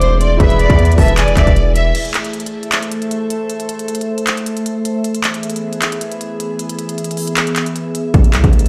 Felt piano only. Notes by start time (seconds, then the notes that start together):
Already playing: E3 E4 G#4 B4
0.37 E3 E4 G#4
0.42 B4
0.96 E3 E4 G#4
1.00 B4
1.06 E3 E4 G#4
1.11 B4
1.34 E3 E4 G#4
1.39 B4